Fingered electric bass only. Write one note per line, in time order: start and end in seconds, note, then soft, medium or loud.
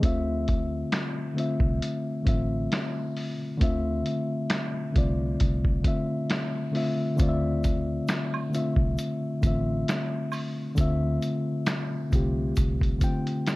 0.03 0.83 D2 loud
1.60 1.78 C2 medium
2.27 2.66 A1 medium
3.61 4.01 D2 loud
4.96 5.35 C2 loud
5.41 5.80 C2 loud
7.20 7.99 D2 loud
8.76 8.94 C2 medium
9.43 9.83 A1 medium
10.78 11.17 D2 medium
12.13 12.52 C2 medium
12.58 12.97 C2 medium